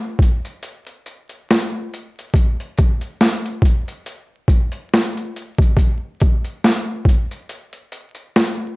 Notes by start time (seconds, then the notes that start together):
0.19 kick, closed hi-hat
0.45 closed hi-hat
0.63 closed hi-hat
0.87 closed hi-hat
1.06 closed hi-hat
1.29 closed hi-hat
1.51 snare, closed hi-hat
1.94 closed hi-hat
2.19 closed hi-hat
2.34 kick, closed hi-hat
2.60 closed hi-hat
2.78 kick, closed hi-hat
3.01 closed hi-hat
3.21 snare, closed hi-hat
3.46 closed hi-hat
3.62 kick, closed hi-hat
3.88 closed hi-hat
4.06 closed hi-hat
4.48 kick, closed hi-hat
4.72 closed hi-hat
4.94 snare, closed hi-hat
5.17 closed hi-hat
5.36 closed hi-hat
5.58 kick, closed hi-hat
5.77 kick, closed hi-hat
6.20 kick, closed hi-hat
6.45 closed hi-hat
6.64 snare, closed hi-hat
7.05 kick, closed hi-hat
7.31 closed hi-hat
7.49 closed hi-hat
7.73 closed hi-hat
7.92 closed hi-hat
8.15 closed hi-hat
8.36 snare, closed hi-hat